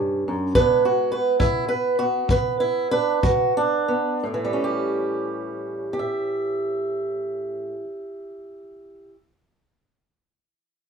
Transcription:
0, 0, Header, 1, 3, 480
1, 0, Start_track
1, 0, Tempo, 840336
1, 317, Time_signature, 4, 2, 24, 8
1, 804, Tempo, 916031
1, 1764, Tempo, 1003344
1, 2244, Tempo, 1038062
1, 5319, End_track
2, 0, Start_track
2, 0, Title_t, "Steel-string acoustic guitar"
2, 0, Program_c, 0, 25
2, 0, Note_on_c, 0, 43, 68
2, 0, Note_on_c, 0, 61, 52
2, 156, Note_off_c, 0, 43, 0
2, 159, Note_on_c, 0, 42, 66
2, 301, Note_off_c, 0, 61, 0
2, 315, Note_on_c, 0, 71, 121
2, 320, Note_off_c, 0, 42, 0
2, 325, Note_on_c, 0, 40, 75
2, 327, Note_on_c, 0, 56, 55
2, 330, Note_on_c, 0, 59, 55
2, 338, Note_on_c, 0, 62, 58
2, 476, Note_off_c, 0, 71, 0
2, 484, Note_off_c, 0, 62, 0
2, 486, Note_on_c, 0, 66, 90
2, 638, Note_on_c, 0, 71, 91
2, 644, Note_off_c, 0, 66, 0
2, 773, Note_off_c, 0, 40, 0
2, 795, Note_off_c, 0, 71, 0
2, 797, Note_on_c, 0, 64, 94
2, 801, Note_off_c, 0, 56, 0
2, 807, Note_on_c, 0, 56, 69
2, 947, Note_off_c, 0, 64, 0
2, 949, Note_on_c, 0, 71, 92
2, 1106, Note_off_c, 0, 59, 0
2, 1108, Note_on_c, 0, 66, 95
2, 1109, Note_off_c, 0, 71, 0
2, 1112, Note_on_c, 0, 59, 49
2, 1239, Note_off_c, 0, 56, 0
2, 1263, Note_on_c, 0, 40, 60
2, 1268, Note_off_c, 0, 66, 0
2, 1274, Note_on_c, 0, 71, 97
2, 1427, Note_off_c, 0, 71, 0
2, 1430, Note_on_c, 0, 64, 95
2, 1591, Note_off_c, 0, 64, 0
2, 1593, Note_on_c, 0, 71, 105
2, 1597, Note_on_c, 0, 62, 50
2, 1725, Note_off_c, 0, 40, 0
2, 1758, Note_off_c, 0, 62, 0
2, 1758, Note_on_c, 0, 56, 64
2, 1760, Note_on_c, 0, 66, 88
2, 1762, Note_off_c, 0, 71, 0
2, 1918, Note_off_c, 0, 66, 0
2, 1922, Note_on_c, 0, 62, 95
2, 2066, Note_off_c, 0, 59, 0
2, 2072, Note_on_c, 0, 59, 51
2, 2207, Note_off_c, 0, 56, 0
2, 2222, Note_off_c, 0, 59, 0
2, 2240, Note_on_c, 0, 45, 70
2, 2245, Note_off_c, 0, 62, 0
2, 2288, Note_on_c, 0, 52, 64
2, 2338, Note_on_c, 0, 55, 66
2, 2377, Note_on_c, 0, 61, 60
2, 2427, Note_on_c, 0, 67, 62
2, 3023, Note_off_c, 0, 55, 0
2, 3025, Note_off_c, 0, 67, 0
2, 3025, Note_on_c, 0, 67, 72
2, 3053, Note_on_c, 0, 76, 66
2, 3858, Note_off_c, 0, 45, 0
2, 3907, Note_off_c, 0, 52, 0
2, 3996, Note_off_c, 0, 61, 0
2, 4487, Note_off_c, 0, 67, 0
2, 4515, Note_off_c, 0, 76, 0
2, 5319, End_track
3, 0, Start_track
3, 0, Title_t, "Drums"
3, 315, Note_on_c, 9, 36, 71
3, 372, Note_off_c, 9, 36, 0
3, 800, Note_on_c, 9, 36, 70
3, 852, Note_off_c, 9, 36, 0
3, 1267, Note_on_c, 9, 36, 69
3, 1319, Note_off_c, 9, 36, 0
3, 1761, Note_on_c, 9, 36, 74
3, 1809, Note_off_c, 9, 36, 0
3, 5319, End_track
0, 0, End_of_file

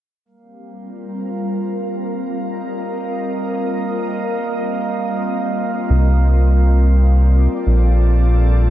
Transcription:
0, 0, Header, 1, 4, 480
1, 0, Start_track
1, 0, Tempo, 500000
1, 8352, End_track
2, 0, Start_track
2, 0, Title_t, "Ambient pad"
2, 0, Program_c, 0, 92
2, 245, Note_on_c, 0, 55, 66
2, 398, Note_on_c, 0, 60, 72
2, 565, Note_on_c, 0, 70, 72
2, 634, Note_on_c, 0, 65, 72
2, 2102, Note_on_c, 0, 75, 70
2, 6490, Note_on_c, 0, 74, 80
2, 6669, Note_off_c, 0, 75, 0
2, 6910, Note_on_c, 0, 69, 77
2, 7098, Note_off_c, 0, 70, 0
2, 8352, Note_off_c, 0, 55, 0
2, 8352, Note_off_c, 0, 60, 0
2, 8352, Note_off_c, 0, 65, 0
2, 8352, Note_off_c, 0, 69, 0
2, 8352, Note_off_c, 0, 74, 0
2, 8352, End_track
3, 0, Start_track
3, 0, Title_t, "Synth texture"
3, 0, Program_c, 1, 99
3, 244, Note_on_c, 1, 58, 74
3, 8352, Note_off_c, 1, 58, 0
3, 8352, End_track
4, 0, Start_track
4, 0, Title_t, "Analog synth bass"
4, 0, Program_c, 2, 38
4, 5666, Note_on_c, 2, 36, 96
4, 7180, Note_off_c, 2, 36, 0
4, 7361, Note_on_c, 2, 34, 86
4, 8352, Note_off_c, 2, 34, 0
4, 8352, End_track
0, 0, End_of_file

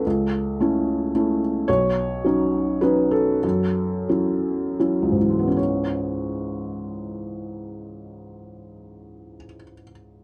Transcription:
0, 0, Header, 1, 2, 480
1, 0, Start_track
1, 0, Key_signature, 4, "minor"
1, 0, Tempo, 546448
1, 44, Time_signature, 3, 2, 24, 8
1, 1965, Tempo, 595829
1, 2925, Tempo, 650759
1, 3405, Tempo, 711744
1, 3885, Tempo, 787402
1, 7205, End_track
2, 0, Start_track
2, 0, Title_t, "Felt piano"
2, 0, Program_c, 0, 0
2, 0, Control_c, 0, 64, 127
2, 0, Note_on_c, 0, 69, 52
2, 56, Note_on_c, 0, 37, 48
2, 58, Control_c, 0, 64, 0
2, 220, Control_c, 0, 64, 127
2, 509, Note_off_c, 0, 37, 0
2, 530, Note_on_c, 0, 57, 35
2, 537, Note_on_c, 0, 61, 34
2, 539, Note_on_c, 0, 64, 39
2, 963, Note_off_c, 0, 57, 0
2, 966, Note_off_c, 0, 61, 0
2, 967, Note_off_c, 0, 64, 0
2, 1009, Note_on_c, 0, 57, 35
2, 1012, Note_on_c, 0, 61, 38
2, 1016, Note_on_c, 0, 64, 41
2, 1230, Note_off_c, 0, 69, 0
2, 1445, Note_off_c, 0, 57, 0
2, 1447, Note_off_c, 0, 61, 0
2, 1449, Note_off_c, 0, 64, 0
2, 1474, Note_on_c, 0, 73, 75
2, 1486, Note_on_c, 0, 35, 44
2, 1487, Control_c, 0, 64, 0
2, 1648, Control_c, 0, 64, 127
2, 1958, Note_off_c, 0, 35, 0
2, 1971, Note_on_c, 0, 54, 37
2, 1980, Note_on_c, 0, 61, 35
2, 1986, Note_on_c, 0, 63, 38
2, 2404, Note_off_c, 0, 54, 0
2, 2408, Note_off_c, 0, 61, 0
2, 2411, Note_off_c, 0, 63, 0
2, 2428, Note_on_c, 0, 71, 65
2, 2434, Note_off_c, 0, 73, 0
2, 2434, Note_on_c, 0, 54, 32
2, 2439, Note_on_c, 0, 61, 36
2, 2444, Note_on_c, 0, 63, 41
2, 2670, Note_on_c, 0, 69, 62
2, 2674, Note_off_c, 0, 71, 0
2, 2894, Note_off_c, 0, 54, 0
2, 2896, Note_off_c, 0, 61, 0
2, 2899, Note_off_c, 0, 63, 0
2, 2931, Note_on_c, 0, 42, 49
2, 2942, Control_c, 0, 64, 0
2, 3065, Control_c, 0, 64, 127
2, 3394, Note_off_c, 0, 42, 0
2, 3414, Note_on_c, 0, 54, 32
2, 3414, Note_on_c, 0, 61, 30
2, 3415, Note_on_c, 0, 64, 33
2, 3863, Note_off_c, 0, 54, 0
2, 3863, Note_off_c, 0, 61, 0
2, 3863, Note_off_c, 0, 64, 0
2, 3887, Note_on_c, 0, 54, 31
2, 3891, Note_on_c, 0, 64, 33
2, 3892, Note_on_c, 0, 61, 28
2, 4026, Note_on_c, 0, 37, 40
2, 4083, Note_on_c, 0, 44, 30
2, 4118, Note_off_c, 0, 69, 0
2, 4142, Note_on_c, 0, 52, 29
2, 4195, Note_on_c, 0, 56, 28
2, 4251, Note_on_c, 0, 59, 33
2, 4293, Note_off_c, 0, 61, 0
2, 4303, Note_on_c, 0, 61, 29
2, 4337, Note_off_c, 0, 54, 0
2, 4339, Note_off_c, 0, 64, 0
2, 4357, Note_on_c, 0, 73, 37
2, 4374, Control_c, 0, 64, 0
2, 4513, Control_c, 0, 64, 127
2, 6668, Note_off_c, 0, 37, 0
2, 6725, Note_off_c, 0, 44, 0
2, 6784, Note_off_c, 0, 52, 0
2, 6836, Note_off_c, 0, 56, 0
2, 6892, Note_off_c, 0, 59, 0
2, 6944, Note_off_c, 0, 61, 0
2, 6999, Note_off_c, 0, 73, 0
2, 7205, End_track
0, 0, End_of_file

